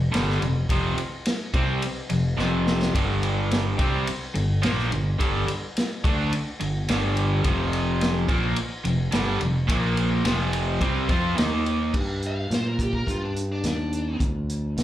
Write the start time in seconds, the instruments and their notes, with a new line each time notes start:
Already playing: fingered electric bass F1
0.12 fingered electric bass G1, overdriven electric guitar G2 D3 G3, snare, ride
0.30 snare
0.41 fingered electric bass F1, overdriven electric guitar F2 C3, ride
0.69 fingered electric bass F1, overdriven electric guitar F2 C3 F3, kick, ride
0.98 muted fingered electric bass stroke, muted overdriven electric guitar stroke, ride
1.25 snare, ride
1.54 fingered electric bass C2, overdriven electric guitar C3 G3 C4, kick, ride
1.82 muted overdriven electric guitar stroke, ride
2.10 fingered electric bass F1, overdriven electric guitar F2 C3, ride
2.37 fingered electric bass F1, overdriven electric guitar F2 C3 F3, snare
2.67 snare
2.82 snare
2.94 fingered electric bass G1, overdriven electric guitar G2 D3 G3, kick, ride
3.23 ride
3.51 snare, ride
3.77 fingered electric bass C2, overdriven electric guitar C3 G3 C4, kick, ride
4.07 muted overdriven electric guitar stroke, muted fingered electric bass stroke, ride
4.34 fingered electric bass G1, overdriven electric guitar G2 D3, ride
4.62 fingered electric bass A#1, overdriven electric guitar A#2 F3 A#3, snare, ride
4.79 snare
4.91 fingered electric bass G1, overdriven electric guitar G2 D3, ride
5.19 fingered electric bass G1, overdriven electric guitar G2 D3 G3, kick, ride
5.48 muted overdriven electric guitar stroke, muted fingered electric bass stroke, ride
5.77 snare, ride
6.04 fingered electric bass D2, overdriven electric guitar D3 A3 D4, kick, ride
6.32 muted overdriven electric guitar stroke, muted fingered electric bass stroke, ride
6.60 fingered electric bass G1, overdriven electric guitar G2 D3, ride
6.88 fingered electric bass G1, overdriven electric guitar G2 D3 G3, snare, ride
7.17 ride
7.44 fingered electric bass F1, overdriven electric guitar F2 C3 F3, kick, ride
7.73 ride
8.01 snare, ride
8.28 fingered electric bass A#1, overdriven electric guitar A#2 F3 A#3, kick, ride
8.56 muted overdriven electric guitar stroke, ride
8.85 fingered electric bass F1, overdriven electric guitar F2 C3, ride
9.12 fingered electric bass G1, overdriven electric guitar G2 D3 G3, snare, ride
9.41 fingered electric bass F1, overdriven electric guitar F2 C3, ride
9.68 fingered electric bass A#1, overdriven electric guitar A#2 F3 A#3, kick, ride
9.97 ride
10.25 fingered electric bass F1, overdriven electric guitar F2 C3 F3, snare, ride
10.53 ride
10.81 fingered electric bass C2, overdriven electric guitar C3 G3 C4, kick, ride
11.09 fingered electric bass F2, overdriven electric guitar F3 C4 F4, kick, ride
11.37 fingered electric bass D#2, overdriven electric guitar D#3 A#3 D#4, snare, ride
11.66 ride
11.94 fingered electric bass G2, kick, crash
12.22 closed hi-hat
12.27 lead electric guitar F5
12.51 fingered electric bass A#2, lead electric guitar C5, snare, closed hi-hat
12.67 lead electric guitar A#4
12.79 lead electric guitar G4, kick, closed hi-hat
12.93 lead electric guitar A#4, kick
13.07 fingered electric bass G2, lead electric guitar F4, kick, closed hi-hat
13.24 lead electric guitar D4
13.36 closed hi-hat
13.52 lead electric guitar D4
13.64 fingered electric bass D#2, lead electric guitar D4, snare, closed hi-hat
13.93 closed hi-hat
14.20 fingered electric bass D2, kick, closed hi-hat
14.49 closed hi-hat
14.77 fingered electric bass C2, snare, closed hi-hat